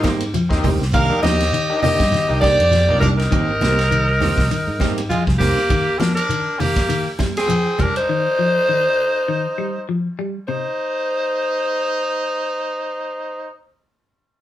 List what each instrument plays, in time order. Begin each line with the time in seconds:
Already playing: alto saxophone G4
0.03 fingered electric bass G#2, clean electric guitar D#3 G3 A#3 C4 G4, kick, snare, ride bell, high conga, shekere
0.20 ride bell, shekere
0.34 clean electric guitar F3, ride bell, high conga, shekere
0.49 fingered electric bass D#2, transistor combo organ A#3 C4 D#4 G4, kick, snare, shekere
0.63 fingered electric bass D2, clean electric guitar D#3 G3 C4 G4, muted clean electric guitar stroke, kick, open hi-hat, low conga, shekere
0.80 fingered electric bass C2, snare, shekere
0.92 fingered electric bass C2, clean electric guitar D#3 A#3 D4 G4, trumpet A#4, alto saxophone F5, muted clean electric guitar stroke, kick, ride bell, shekere
1.09 transistor combo organ A#3 D4 D#4 G4, high conga, shekere
1.22 fingered electric bass D#2, clean electric guitar D#3 F3 A#3 D4 G4, trumpet G4, alto saxophone D#5, snare, ride bell, high conga, shekere
1.40 snare, ride bell, shekere
1.52 clean electric guitar D#3, ride bell, shekere
1.69 transistor combo organ A#3 D4 D#4 G4, shekere
1.82 clean electric guitar D3 D#3 A#3 D4 G4, trumpet G4, alto saxophone D#5, open hi-hat, low conga, shekere
1.98 fingered electric bass G2, kick, snare, ride bell, high conga, shekere
2.12 clean electric guitar D#3, snare, ride bell, shekere
2.28 fingered electric bass C2, transistor combo organ A#3 D4 D#4 G4, shekere
2.41 clean electric guitar D#3 G3 A#3 D4 G4, trumpet G4, alto saxophone D5, kick, snare, ride bell, high conga, shekere
2.58 fingered electric bass F2, ride bell, shekere
2.71 clean electric guitar F3, snare, ride bell, high conga, shekere
2.88 fingered electric bass C2, transistor combo organ A#3 D4 D#4 F4, clean electric guitar A#3 D4 G4, shekere
3.00 clean electric guitar D#3 G3 A#3 D4 G4, trumpet D4, alto saxophone A#4, kick, ride bell, low conga, shekere
3.18 trumpet D#4, alto saxophone A#4, snare, ride bell, shekere
3.31 fingered electric bass G#1, clean electric guitar D#3 A#3 C4 G4, kick, ride bell, shekere
3.48 shekere
3.61 fingered electric bass C2, clean electric guitar D#3 A#3 C4 G4, muted clean electric guitar stroke, snare, ride bell, high conga, shekere
3.78 snare, ride bell, shekere
3.91 clean electric guitar D#3, ride bell, shekere
4.08 shekere
4.20 clean electric guitar D#3 A#3 C4 G4, open hi-hat, low conga, shekere
4.36 fingered electric bass C2, kick, snare, high conga, shekere
4.51 clean electric guitar D#3, ride bell, shekere
4.67 fingered electric bass G#2, shekere
4.80 fingered electric bass G#2, clean electric guitar D#3 G3 A#3 C4 G4, kick, snare, ride bell, high conga, shekere
4.98 ride bell, shekere
5.09 clean electric guitar F3, trumpet G#3, alto saxophone F4, ride bell, high conga, shekere
5.27 fingered electric bass C2, kick, snare, high conga, shekere
5.38 clean electric guitar D#3 A#3 C4, trumpet A#3, alto saxophone G4, muted clean electric guitar stroke, kick, snare, open hi-hat, low conga, shekere
5.57 shekere
5.69 clean electric guitar D#3, kick, ride bell, shekere
5.87 shekere
5.99 clean electric guitar F3, trumpet D4, alto saxophone A#4, snare, ride bell, high conga, shekere
6.15 trumpet D4, alto saxophone A#4, ride bell, shekere
6.29 clean electric guitar D#3, ride bell, shekere
6.47 shekere
6.59 clean electric guitar D#3, trumpet A#3, alto saxophone G4, open hi-hat, low conga, shekere
6.76 kick, snare, ride bell, high conga, shekere
6.89 clean electric guitar D#3, ride bell, shekere
7.07 shekere
7.19 clean electric guitar G3, kick, snare, ride bell, high conga, shekere
7.37 trumpet C4, alto saxophone G#4, snare, ride bell, shekere
7.48 clean electric guitar F3, ride bell, high conga, shekere
7.66 shekere
7.79 clean electric guitar G3, alto saxophone A#4, kick, ride bell, low conga, shekere
7.83 trumpet D4
7.95 trumpet D#4, alto saxophone C5, ride bell, shekere
8.09 clean electric guitar D#3
8.39 clean electric guitar F3
8.69 clean electric guitar D#3
9.28 clean electric guitar D#3
9.58 clean electric guitar G3
9.89 clean electric guitar F3
10.19 clean electric guitar G3
10.48 clean electric guitar C3, trumpet D#4, alto saxophone C5